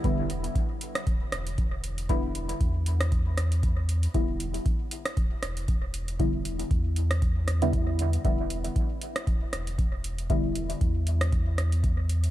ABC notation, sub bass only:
X:1
M:4/4
L:1/8
Q:"Swing 16ths" 1/4=117
K:Em
V:1 name="Sub bass" clef=bass
E,,,2 z2 D,,, E,,,3- | E,,,2 E,,6 | E,,,2 z2 D,,, E,,,3- | E,,,2 E,,6 |
E,,,2 z2 D,,, E,,,3- | E,,,2 E,,6 |]